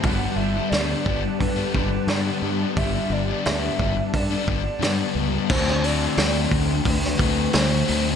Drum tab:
CC |----------------|----------------|x---------------|
HH |o---o---o---o---|o---o---o---o---|--o-o-o-o-o-o-o-|
SD |----o-------o---|----o-------o---|-o--o----o--o---|
BD |o-----o-o-o-----|o-----o-o-o-----|o-----o-o-o-----|